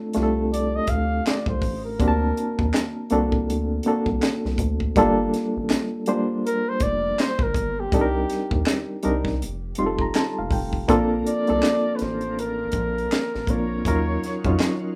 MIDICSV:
0, 0, Header, 1, 6, 480
1, 0, Start_track
1, 0, Key_signature, -2, "major"
1, 0, Tempo, 740741
1, 1294, Time_signature, 4, 2, 24, 8
1, 9691, End_track
2, 0, Start_track
2, 0, Title_t, "Flugelhorn"
2, 0, Program_c, 0, 56
2, 346, Note_on_c, 0, 74, 91
2, 489, Note_on_c, 0, 75, 98
2, 499, Note_off_c, 0, 74, 0
2, 581, Note_on_c, 0, 77, 96
2, 590, Note_off_c, 0, 75, 0
2, 826, Note_on_c, 0, 74, 86
2, 835, Note_off_c, 0, 77, 0
2, 961, Note_off_c, 0, 74, 0
2, 965, Note_on_c, 0, 72, 85
2, 1185, Note_off_c, 0, 72, 0
2, 1199, Note_on_c, 0, 70, 86
2, 1892, Note_off_c, 0, 70, 0
2, 4187, Note_on_c, 0, 70, 99
2, 4336, Note_on_c, 0, 72, 98
2, 4346, Note_off_c, 0, 70, 0
2, 4425, Note_on_c, 0, 74, 108
2, 4435, Note_off_c, 0, 72, 0
2, 4671, Note_on_c, 0, 72, 96
2, 4681, Note_off_c, 0, 74, 0
2, 4814, Note_on_c, 0, 70, 89
2, 4824, Note_off_c, 0, 72, 0
2, 5056, Note_on_c, 0, 67, 92
2, 5066, Note_off_c, 0, 70, 0
2, 5767, Note_off_c, 0, 67, 0
2, 7308, Note_on_c, 0, 74, 106
2, 7750, Note_on_c, 0, 71, 60
2, 7760, Note_off_c, 0, 74, 0
2, 7790, Note_on_c, 0, 72, 89
2, 7800, Note_off_c, 0, 71, 0
2, 8035, Note_on_c, 0, 70, 89
2, 8045, Note_off_c, 0, 72, 0
2, 8749, Note_on_c, 0, 73, 95
2, 8759, Note_off_c, 0, 70, 0
2, 9691, Note_off_c, 0, 73, 0
2, 9691, End_track
3, 0, Start_track
3, 0, Title_t, "Reed electric piano"
3, 0, Program_c, 1, 4
3, 0, Control_c, 1, 64, 127
3, 0, Note_on_c, 1, 57, 106
3, 0, Note_on_c, 1, 60, 91
3, 0, Note_on_c, 1, 62, 96
3, 0, Note_on_c, 1, 65, 97
3, 0, Note_on_c, 1, 69, 120
3, 0, Note_on_c, 1, 73, 59
3, 93, Note_off_c, 1, 57, 0
3, 93, Note_on_c, 1, 57, 86
3, 99, Note_off_c, 1, 60, 0
3, 99, Note_on_c, 1, 60, 71
3, 100, Note_off_c, 1, 62, 0
3, 100, Note_on_c, 1, 62, 73
3, 102, Note_off_c, 1, 65, 0
3, 102, Note_on_c, 1, 65, 72
3, 105, Note_on_c, 1, 67, 67
3, 148, Note_off_c, 1, 69, 0
3, 148, Note_on_c, 1, 69, 86
3, 150, Note_off_c, 1, 67, 0
3, 832, Note_off_c, 1, 57, 0
3, 835, Note_off_c, 1, 60, 0
3, 836, Note_off_c, 1, 62, 0
3, 837, Note_off_c, 1, 65, 0
3, 860, Note_off_c, 1, 69, 0
3, 1292, Note_on_c, 1, 58, 90
3, 1297, Note_on_c, 1, 62, 83
3, 1298, Note_on_c, 1, 60, 87
3, 1299, Note_on_c, 1, 66, 78
3, 1303, Control_c, 1, 64, 0
3, 1304, Note_off_c, 1, 73, 0
3, 1306, Note_on_c, 1, 67, 78
3, 1346, Note_on_c, 1, 81, 97
3, 1350, Note_off_c, 1, 67, 0
3, 1408, Control_c, 1, 64, 127
3, 1859, Note_off_c, 1, 58, 0
3, 1861, Note_off_c, 1, 62, 0
3, 1862, Note_off_c, 1, 60, 0
3, 1862, Note_off_c, 1, 66, 0
3, 1886, Note_off_c, 1, 81, 0
3, 2014, Note_on_c, 1, 58, 79
3, 2017, Note_on_c, 1, 60, 79
3, 2021, Note_on_c, 1, 62, 78
3, 2024, Note_on_c, 1, 69, 93
3, 2025, Note_on_c, 1, 66, 76
3, 2404, Note_off_c, 1, 58, 0
3, 2405, Note_off_c, 1, 60, 0
3, 2407, Note_off_c, 1, 62, 0
3, 2409, Note_off_c, 1, 66, 0
3, 2409, Note_off_c, 1, 69, 0
3, 2502, Note_on_c, 1, 58, 74
3, 2502, Note_on_c, 1, 60, 64
3, 2507, Note_on_c, 1, 62, 66
3, 2508, Note_on_c, 1, 66, 66
3, 2512, Note_on_c, 1, 69, 82
3, 3064, Note_off_c, 1, 58, 0
3, 3064, Note_off_c, 1, 60, 0
3, 3066, Note_off_c, 1, 62, 0
3, 3067, Note_off_c, 1, 66, 0
3, 3069, Note_off_c, 1, 69, 0
3, 3218, Note_on_c, 1, 55, 111
3, 3220, Note_on_c, 1, 58, 101
3, 3223, Note_on_c, 1, 62, 98
3, 3224, Control_c, 1, 64, 0
3, 3227, Note_on_c, 1, 65, 97
3, 3231, Note_on_c, 1, 69, 115
3, 3344, Control_c, 1, 64, 127
3, 3782, Note_off_c, 1, 55, 0
3, 3783, Note_off_c, 1, 58, 0
3, 3784, Note_off_c, 1, 62, 0
3, 3786, Note_off_c, 1, 65, 0
3, 3788, Note_off_c, 1, 69, 0
3, 3937, Note_on_c, 1, 55, 82
3, 3938, Note_on_c, 1, 58, 77
3, 3940, Note_on_c, 1, 62, 73
3, 3944, Note_on_c, 1, 72, 96
3, 3945, Note_on_c, 1, 65, 74
3, 4674, Note_off_c, 1, 55, 0
3, 4675, Note_off_c, 1, 58, 0
3, 4676, Note_off_c, 1, 62, 0
3, 4678, Note_off_c, 1, 72, 0
3, 4679, Note_off_c, 1, 65, 0
3, 5140, Note_on_c, 1, 55, 93
3, 5141, Note_on_c, 1, 60, 82
3, 5142, Control_c, 1, 64, 0
3, 5145, Note_on_c, 1, 62, 81
3, 5147, Note_on_c, 1, 63, 87
3, 5148, Note_on_c, 1, 69, 85
3, 5192, Note_off_c, 1, 69, 0
3, 5192, Note_on_c, 1, 70, 104
3, 5241, Control_c, 1, 64, 127
3, 5703, Note_off_c, 1, 55, 0
3, 5703, Note_off_c, 1, 60, 0
3, 5705, Note_off_c, 1, 62, 0
3, 5706, Note_off_c, 1, 63, 0
3, 5729, Note_off_c, 1, 70, 0
3, 5853, Note_on_c, 1, 55, 86
3, 5855, Note_on_c, 1, 60, 79
3, 5856, Note_on_c, 1, 62, 76
3, 5861, Note_on_c, 1, 63, 78
3, 5863, Note_on_c, 1, 70, 94
3, 6094, Note_off_c, 1, 55, 0
3, 6095, Note_off_c, 1, 60, 0
3, 6095, Note_off_c, 1, 62, 0
3, 6098, Note_off_c, 1, 63, 0
3, 6099, Note_off_c, 1, 70, 0
3, 6102, Control_c, 1, 64, 0
3, 6226, Control_c, 1, 64, 127
3, 6338, Note_on_c, 1, 55, 76
3, 6340, Note_on_c, 1, 60, 73
3, 6342, Note_on_c, 1, 63, 72
3, 6342, Note_on_c, 1, 84, 64
3, 6346, Note_on_c, 1, 65, 74
3, 6347, Note_on_c, 1, 67, 62
3, 6391, Note_off_c, 1, 67, 0
3, 6392, Note_on_c, 1, 69, 81
3, 6472, Note_off_c, 1, 84, 0
3, 6490, Note_on_c, 1, 82, 71
3, 6574, Note_off_c, 1, 82, 0
3, 6582, Note_on_c, 1, 81, 65
3, 6712, Note_off_c, 1, 81, 0
3, 6730, Note_on_c, 1, 77, 64
3, 6814, Note_off_c, 1, 77, 0
3, 6820, Note_on_c, 1, 79, 74
3, 6902, Note_off_c, 1, 55, 0
3, 6903, Note_off_c, 1, 60, 0
3, 6904, Note_off_c, 1, 63, 0
3, 6906, Note_off_c, 1, 65, 0
3, 6929, Note_off_c, 1, 69, 0
3, 7041, Note_off_c, 1, 79, 0
3, 7052, Note_on_c, 1, 58, 101
3, 7053, Note_on_c, 1, 60, 91
3, 7053, Note_on_c, 1, 62, 90
3, 7059, Note_on_c, 1, 65, 94
3, 7062, Control_c, 1, 64, 0
3, 7062, Note_on_c, 1, 69, 113
3, 7158, Control_c, 1, 64, 127
3, 7336, Note_off_c, 1, 58, 0
3, 7337, Note_off_c, 1, 60, 0
3, 7337, Note_off_c, 1, 62, 0
3, 7339, Note_off_c, 1, 65, 0
3, 7341, Note_off_c, 1, 69, 0
3, 7438, Note_on_c, 1, 58, 67
3, 7442, Note_on_c, 1, 60, 61
3, 7444, Note_on_c, 1, 62, 64
3, 7448, Note_on_c, 1, 65, 61
3, 7451, Note_on_c, 1, 69, 78
3, 8171, Note_off_c, 1, 58, 0
3, 8172, Note_off_c, 1, 60, 0
3, 8174, Note_off_c, 1, 62, 0
3, 8176, Note_off_c, 1, 65, 0
3, 8177, Note_off_c, 1, 69, 0
3, 8745, Note_on_c, 1, 60, 63
3, 8746, Note_on_c, 1, 58, 68
3, 8748, Note_on_c, 1, 62, 66
3, 8752, Note_on_c, 1, 65, 65
3, 8754, Note_on_c, 1, 70, 78
3, 8934, Note_off_c, 1, 60, 0
3, 8935, Note_off_c, 1, 58, 0
3, 8936, Note_off_c, 1, 62, 0
3, 8938, Note_off_c, 1, 65, 0
3, 8939, Note_off_c, 1, 70, 0
3, 8983, Control_c, 1, 64, 0
3, 8983, Note_on_c, 1, 54, 90
3, 8987, Note_on_c, 1, 61, 84
3, 8991, Note_on_c, 1, 63, 78
3, 8992, Note_on_c, 1, 65, 79
3, 8993, Note_on_c, 1, 70, 102
3, 9090, Control_c, 1, 64, 127
3, 9261, Note_off_c, 1, 54, 0
3, 9263, Note_off_c, 1, 61, 0
3, 9266, Note_off_c, 1, 63, 0
3, 9266, Note_off_c, 1, 65, 0
3, 9267, Note_off_c, 1, 70, 0
3, 9364, Note_on_c, 1, 61, 78
3, 9365, Note_on_c, 1, 54, 81
3, 9368, Note_on_c, 1, 63, 74
3, 9373, Note_on_c, 1, 65, 79
3, 9376, Note_on_c, 1, 73, 86
3, 9691, Note_off_c, 1, 54, 0
3, 9691, Note_off_c, 1, 61, 0
3, 9691, Note_off_c, 1, 63, 0
3, 9691, Note_off_c, 1, 65, 0
3, 9691, Note_off_c, 1, 73, 0
3, 9691, End_track
4, 0, Start_track
4, 0, Title_t, "Tonewheel organ"
4, 0, Program_c, 2, 16
4, 7055, Note_on_c, 2, 62, 60
4, 7056, Note_on_c, 2, 58, 54
4, 7058, Note_on_c, 2, 53, 57
4, 8956, Note_off_c, 2, 58, 0
4, 8956, Note_off_c, 2, 62, 0
4, 8957, Note_off_c, 2, 53, 0
4, 8973, Note_on_c, 2, 51, 58
4, 8974, Note_on_c, 2, 61, 52
4, 8975, Note_on_c, 2, 65, 53
4, 8978, Note_on_c, 2, 54, 66
4, 9691, Note_off_c, 2, 51, 0
4, 9691, Note_off_c, 2, 54, 0
4, 9691, Note_off_c, 2, 61, 0
4, 9691, Note_off_c, 2, 65, 0
4, 9691, End_track
5, 0, Start_track
5, 0, Title_t, "Analog synth bass"
5, 0, Program_c, 3, 38
5, 107, Note_on_c, 3, 36, 94
5, 515, Note_off_c, 3, 36, 0
5, 572, Note_on_c, 3, 38, 86
5, 780, Note_off_c, 3, 38, 0
5, 953, Note_on_c, 3, 36, 90
5, 1038, Note_off_c, 3, 36, 0
5, 1053, Note_on_c, 3, 33, 82
5, 1299, Note_on_c, 3, 38, 113
5, 1308, Note_off_c, 3, 33, 0
5, 1504, Note_off_c, 3, 38, 0
5, 1683, Note_on_c, 3, 39, 88
5, 1764, Note_off_c, 3, 39, 0
5, 2022, Note_on_c, 3, 36, 101
5, 2259, Note_on_c, 3, 38, 92
5, 2268, Note_off_c, 3, 36, 0
5, 2464, Note_off_c, 3, 38, 0
5, 2636, Note_on_c, 3, 36, 88
5, 2720, Note_off_c, 3, 36, 0
5, 2886, Note_on_c, 3, 36, 96
5, 2966, Note_off_c, 3, 36, 0
5, 2974, Note_on_c, 3, 38, 89
5, 3181, Note_off_c, 3, 38, 0
5, 3218, Note_on_c, 3, 31, 111
5, 3423, Note_off_c, 3, 31, 0
5, 3608, Note_on_c, 3, 33, 81
5, 3687, Note_off_c, 3, 33, 0
5, 4415, Note_on_c, 3, 29, 91
5, 4622, Note_off_c, 3, 29, 0
5, 4794, Note_on_c, 3, 31, 92
5, 4879, Note_off_c, 3, 31, 0
5, 4894, Note_on_c, 3, 31, 85
5, 5101, Note_off_c, 3, 31, 0
5, 5140, Note_on_c, 3, 36, 109
5, 5344, Note_off_c, 3, 36, 0
5, 5521, Note_on_c, 3, 39, 85
5, 5603, Note_off_c, 3, 39, 0
5, 5868, Note_on_c, 3, 36, 97
5, 6107, Note_on_c, 3, 29, 109
5, 6117, Note_off_c, 3, 36, 0
5, 6308, Note_off_c, 3, 29, 0
5, 6346, Note_on_c, 3, 29, 85
5, 6548, Note_off_c, 3, 29, 0
5, 6733, Note_on_c, 3, 29, 86
5, 6810, Note_off_c, 3, 29, 0
5, 6815, Note_on_c, 3, 29, 92
5, 7022, Note_off_c, 3, 29, 0
5, 7061, Note_on_c, 3, 34, 95
5, 7265, Note_off_c, 3, 34, 0
5, 7452, Note_on_c, 3, 36, 76
5, 7529, Note_off_c, 3, 36, 0
5, 7787, Note_on_c, 3, 33, 95
5, 8195, Note_off_c, 3, 33, 0
5, 8253, Note_on_c, 3, 34, 91
5, 8461, Note_off_c, 3, 34, 0
5, 8653, Note_on_c, 3, 33, 83
5, 8730, Note_off_c, 3, 33, 0
5, 8738, Note_on_c, 3, 34, 79
5, 8943, Note_off_c, 3, 34, 0
5, 8982, Note_on_c, 3, 39, 98
5, 9185, Note_off_c, 3, 39, 0
5, 9366, Note_on_c, 3, 41, 80
5, 9446, Note_off_c, 3, 41, 0
5, 9691, End_track
6, 0, Start_track
6, 0, Title_t, "Drums"
6, 87, Note_on_c, 9, 42, 63
6, 100, Note_on_c, 9, 38, 30
6, 152, Note_off_c, 9, 42, 0
6, 165, Note_off_c, 9, 38, 0
6, 348, Note_on_c, 9, 42, 80
6, 412, Note_off_c, 9, 42, 0
6, 565, Note_on_c, 9, 42, 69
6, 568, Note_on_c, 9, 36, 88
6, 630, Note_off_c, 9, 42, 0
6, 633, Note_off_c, 9, 36, 0
6, 819, Note_on_c, 9, 42, 60
6, 820, Note_on_c, 9, 39, 83
6, 825, Note_on_c, 9, 38, 99
6, 884, Note_off_c, 9, 42, 0
6, 885, Note_off_c, 9, 39, 0
6, 890, Note_off_c, 9, 38, 0
6, 948, Note_on_c, 9, 36, 92
6, 1012, Note_off_c, 9, 36, 0
6, 1048, Note_on_c, 9, 36, 88
6, 1054, Note_on_c, 9, 46, 43
6, 1113, Note_off_c, 9, 36, 0
6, 1119, Note_off_c, 9, 46, 0
6, 1293, Note_on_c, 9, 36, 100
6, 1297, Note_on_c, 9, 42, 66
6, 1358, Note_off_c, 9, 36, 0
6, 1361, Note_off_c, 9, 42, 0
6, 1538, Note_on_c, 9, 42, 64
6, 1603, Note_off_c, 9, 42, 0
6, 1677, Note_on_c, 9, 36, 91
6, 1741, Note_off_c, 9, 36, 0
6, 1772, Note_on_c, 9, 39, 89
6, 1778, Note_on_c, 9, 38, 114
6, 1787, Note_on_c, 9, 42, 92
6, 1837, Note_off_c, 9, 39, 0
6, 1843, Note_off_c, 9, 38, 0
6, 1852, Note_off_c, 9, 42, 0
6, 2008, Note_on_c, 9, 42, 62
6, 2072, Note_off_c, 9, 42, 0
6, 2153, Note_on_c, 9, 36, 81
6, 2217, Note_off_c, 9, 36, 0
6, 2267, Note_on_c, 9, 42, 81
6, 2331, Note_off_c, 9, 42, 0
6, 2483, Note_on_c, 9, 42, 70
6, 2547, Note_off_c, 9, 42, 0
6, 2632, Note_on_c, 9, 36, 81
6, 2696, Note_off_c, 9, 36, 0
6, 2735, Note_on_c, 9, 39, 83
6, 2735, Note_on_c, 9, 42, 66
6, 2741, Note_on_c, 9, 38, 103
6, 2800, Note_off_c, 9, 39, 0
6, 2800, Note_off_c, 9, 42, 0
6, 2806, Note_off_c, 9, 38, 0
6, 2885, Note_on_c, 9, 38, 35
6, 2950, Note_off_c, 9, 38, 0
6, 2968, Note_on_c, 9, 36, 89
6, 2973, Note_on_c, 9, 42, 65
6, 3032, Note_off_c, 9, 36, 0
6, 3037, Note_off_c, 9, 42, 0
6, 3112, Note_on_c, 9, 36, 73
6, 3176, Note_off_c, 9, 36, 0
6, 3213, Note_on_c, 9, 36, 104
6, 3216, Note_on_c, 9, 42, 74
6, 3278, Note_off_c, 9, 36, 0
6, 3281, Note_off_c, 9, 42, 0
6, 3458, Note_on_c, 9, 42, 66
6, 3466, Note_on_c, 9, 38, 35
6, 3522, Note_off_c, 9, 42, 0
6, 3531, Note_off_c, 9, 38, 0
6, 3691, Note_on_c, 9, 39, 95
6, 3697, Note_on_c, 9, 38, 117
6, 3706, Note_on_c, 9, 42, 88
6, 3756, Note_off_c, 9, 39, 0
6, 3761, Note_off_c, 9, 38, 0
6, 3770, Note_off_c, 9, 42, 0
6, 3927, Note_on_c, 9, 42, 64
6, 3992, Note_off_c, 9, 42, 0
6, 4190, Note_on_c, 9, 42, 81
6, 4254, Note_off_c, 9, 42, 0
6, 4406, Note_on_c, 9, 42, 69
6, 4410, Note_on_c, 9, 36, 98
6, 4470, Note_off_c, 9, 42, 0
6, 4475, Note_off_c, 9, 36, 0
6, 4659, Note_on_c, 9, 42, 68
6, 4660, Note_on_c, 9, 39, 81
6, 4665, Note_on_c, 9, 38, 94
6, 4724, Note_off_c, 9, 39, 0
6, 4724, Note_off_c, 9, 42, 0
6, 4730, Note_off_c, 9, 38, 0
6, 4788, Note_on_c, 9, 36, 102
6, 4853, Note_off_c, 9, 36, 0
6, 4889, Note_on_c, 9, 36, 93
6, 4897, Note_on_c, 9, 42, 65
6, 4954, Note_off_c, 9, 36, 0
6, 4961, Note_off_c, 9, 42, 0
6, 5133, Note_on_c, 9, 36, 107
6, 5137, Note_on_c, 9, 42, 68
6, 5198, Note_off_c, 9, 36, 0
6, 5202, Note_off_c, 9, 42, 0
6, 5376, Note_on_c, 9, 42, 71
6, 5384, Note_on_c, 9, 38, 35
6, 5440, Note_off_c, 9, 42, 0
6, 5449, Note_off_c, 9, 38, 0
6, 5516, Note_on_c, 9, 36, 93
6, 5580, Note_off_c, 9, 36, 0
6, 5611, Note_on_c, 9, 39, 93
6, 5617, Note_on_c, 9, 38, 118
6, 5626, Note_on_c, 9, 42, 91
6, 5676, Note_off_c, 9, 39, 0
6, 5681, Note_off_c, 9, 38, 0
6, 5690, Note_off_c, 9, 42, 0
6, 5849, Note_on_c, 9, 42, 62
6, 5914, Note_off_c, 9, 42, 0
6, 5992, Note_on_c, 9, 36, 85
6, 6004, Note_on_c, 9, 38, 35
6, 6057, Note_off_c, 9, 36, 0
6, 6069, Note_off_c, 9, 38, 0
6, 6105, Note_on_c, 9, 42, 78
6, 6170, Note_off_c, 9, 42, 0
6, 6319, Note_on_c, 9, 42, 71
6, 6384, Note_off_c, 9, 42, 0
6, 6470, Note_on_c, 9, 36, 79
6, 6535, Note_off_c, 9, 36, 0
6, 6575, Note_on_c, 9, 39, 78
6, 6575, Note_on_c, 9, 42, 65
6, 6581, Note_on_c, 9, 38, 106
6, 6640, Note_off_c, 9, 39, 0
6, 6640, Note_off_c, 9, 42, 0
6, 6645, Note_off_c, 9, 38, 0
6, 6808, Note_on_c, 9, 36, 98
6, 6814, Note_on_c, 9, 46, 48
6, 6873, Note_off_c, 9, 36, 0
6, 6879, Note_off_c, 9, 46, 0
6, 6951, Note_on_c, 9, 36, 70
6, 7016, Note_off_c, 9, 36, 0
6, 7055, Note_on_c, 9, 36, 102
6, 7059, Note_on_c, 9, 42, 69
6, 7119, Note_off_c, 9, 36, 0
6, 7124, Note_off_c, 9, 42, 0
6, 7300, Note_on_c, 9, 42, 62
6, 7364, Note_off_c, 9, 42, 0
6, 7434, Note_on_c, 9, 42, 32
6, 7499, Note_off_c, 9, 42, 0
6, 7532, Note_on_c, 9, 39, 87
6, 7537, Note_on_c, 9, 38, 106
6, 7546, Note_on_c, 9, 42, 85
6, 7597, Note_off_c, 9, 39, 0
6, 7602, Note_off_c, 9, 38, 0
6, 7611, Note_off_c, 9, 42, 0
6, 7768, Note_on_c, 9, 42, 57
6, 7781, Note_on_c, 9, 38, 31
6, 7833, Note_off_c, 9, 42, 0
6, 7846, Note_off_c, 9, 38, 0
6, 7911, Note_on_c, 9, 42, 31
6, 7976, Note_off_c, 9, 42, 0
6, 8026, Note_on_c, 9, 42, 70
6, 8091, Note_off_c, 9, 42, 0
6, 8240, Note_on_c, 9, 42, 67
6, 8249, Note_on_c, 9, 36, 90
6, 8305, Note_off_c, 9, 42, 0
6, 8314, Note_off_c, 9, 36, 0
6, 8412, Note_on_c, 9, 42, 31
6, 8477, Note_off_c, 9, 42, 0
6, 8500, Note_on_c, 9, 39, 79
6, 8500, Note_on_c, 9, 42, 61
6, 8505, Note_on_c, 9, 38, 103
6, 8564, Note_off_c, 9, 42, 0
6, 8565, Note_off_c, 9, 39, 0
6, 8570, Note_off_c, 9, 38, 0
6, 8647, Note_on_c, 9, 38, 33
6, 8712, Note_off_c, 9, 38, 0
6, 8731, Note_on_c, 9, 36, 90
6, 8737, Note_on_c, 9, 42, 65
6, 8795, Note_off_c, 9, 36, 0
6, 8802, Note_off_c, 9, 42, 0
6, 8976, Note_on_c, 9, 36, 94
6, 8981, Note_on_c, 9, 42, 68
6, 9041, Note_off_c, 9, 36, 0
6, 9046, Note_off_c, 9, 42, 0
6, 9224, Note_on_c, 9, 42, 61
6, 9232, Note_on_c, 9, 38, 33
6, 9289, Note_off_c, 9, 42, 0
6, 9297, Note_off_c, 9, 38, 0
6, 9359, Note_on_c, 9, 42, 30
6, 9361, Note_on_c, 9, 36, 93
6, 9424, Note_off_c, 9, 42, 0
6, 9425, Note_off_c, 9, 36, 0
6, 9457, Note_on_c, 9, 39, 84
6, 9462, Note_on_c, 9, 38, 113
6, 9471, Note_on_c, 9, 42, 86
6, 9522, Note_off_c, 9, 39, 0
6, 9527, Note_off_c, 9, 38, 0
6, 9536, Note_off_c, 9, 42, 0
6, 9691, End_track
0, 0, End_of_file